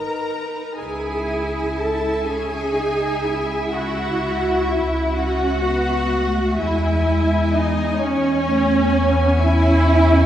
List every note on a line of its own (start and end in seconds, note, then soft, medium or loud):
0.00 0.61 G#1 soft
0.00 0.61 G#2 soft
0.00 0.78 D#4 soft
0.00 0.76 A#4 medium
0.00 0.78 B4 soft
0.00 0.76 A#5 medium
0.79 6.54 C#2 medium
0.79 2.23 E4 soft
0.79 1.79 G#4 medium
0.79 6.55 E5 soft
0.79 1.77 G#5 soft
1.78 2.27 A4 medium
1.78 2.27 A5 medium
2.27 2.75 C#4 soft
2.27 3.71 G#4 medium
2.27 3.71 G#5 medium
2.75 3.23 D#4 medium
3.23 5.15 E4 medium
3.71 4.66 F#4 medium
3.71 4.67 F#5 medium
4.66 5.15 E4 medium
4.66 5.15 E5 medium
5.13 5.62 C#4 medium
5.13 6.59 F#4 medium
5.13 6.55 F#5 medium
5.63 6.11 B3 medium
6.11 6.59 A3 soft
6.58 10.26 E2 medium
6.58 7.97 G#3 medium
6.58 7.51 E4 medium
6.58 7.51 E5 medium
6.58 10.26 G#5 medium
7.53 8.00 D#4 medium
7.53 8.00 D#5 medium
8.00 8.46 C#4 medium
8.00 9.41 C#4 medium
8.00 9.40 C#5 medium
8.47 8.94 A3 medium
8.94 9.40 B3 medium
9.39 10.26 C#4 medium
9.39 10.26 E4 loud
9.39 10.26 E5 medium